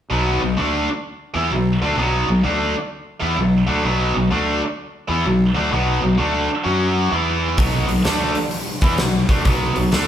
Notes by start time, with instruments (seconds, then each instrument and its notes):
0.10 fingered electric bass B1, distorted electric guitar B2 F#3 B3
0.41 fingered electric bass B1, distorted electric guitar B2 F#3
0.57 fingered electric bass D2, distorted electric guitar D3 A3 D4
1.34 fingered electric bass E2, distorted electric guitar E3 B3 E4
1.51 fingered electric bass B1, distorted electric guitar B2 F#3
1.82 fingered electric bass D2, distorted electric guitar D3 A3 D4
1.96 fingered electric bass B1, distorted electric guitar B2 F#3 B3
2.28 fingered electric bass B1, distorted electric guitar B2 F#3
2.43 fingered electric bass D2, distorted electric guitar D3 A3 D4
3.20 fingered electric bass E2, distorted electric guitar E3 B3 E4
3.37 fingered electric bass B1, distorted electric guitar B2 F#3
3.67 fingered electric bass D2, distorted electric guitar D3 A3 D4
3.84 fingered electric bass B1, distorted electric guitar B2 F#3 B3
4.15 fingered electric bass B1, distorted electric guitar B2 F#3
4.31 fingered electric bass D2, distorted electric guitar D3 A3 D4
5.08 fingered electric bass E2, distorted electric guitar E3 B3 E4
5.25 fingered electric bass B1, distorted electric guitar B2 F#3
5.55 fingered electric bass D2, distorted electric guitar D3 A3 D4
5.71 fingered electric bass B1, distorted electric guitar B2 F#3 B3
6.01 fingered electric bass B1, distorted electric guitar B2 F#3
6.17 fingered electric bass D2, distorted electric guitar D3 A3 D4
6.64 fingered electric bass F#2, distorted electric guitar F#3 C#4 F#4
7.11 fingered electric bass E2, distorted electric guitar E3 B3 E4
7.58 fingered electric bass B1, distorted electric guitar B2 F#3 B3, kick, open hi-hat
7.88 fingered electric bass B1, distorted electric guitar B2 F#3, open hi-hat
8.04 fingered electric bass D2, distorted electric guitar D3 A3 D4, snare, open hi-hat
8.35 open hi-hat
8.51 open hi-hat
8.81 fingered electric bass E2, distorted electric guitar E3 B3 E4, kick, open hi-hat
8.98 fingered electric bass B1, distorted electric guitar B2 F#3, snare, open hi-hat
9.29 fingered electric bass D2, distorted electric guitar D3 A3 D4, kick, open hi-hat
9.44 fingered electric bass B1, distorted electric guitar B2 F#3 B3, kick, open hi-hat
9.75 fingered electric bass B1, distorted electric guitar B2 F#3, open hi-hat
9.91 fingered electric bass D2, distorted electric guitar D3 A3 D4, snare, open hi-hat